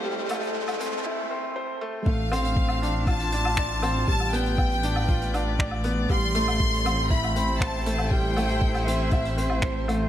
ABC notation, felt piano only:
X:1
M:4/4
L:1/8
Q:1/4=119
K:Am
V:1 name="Felt piano"
G, A, z C E C c A, | A, C z D F D d C | G, B, z D F D d B, | G, A, z C E C c A, |
G, A, z C E C c A, |]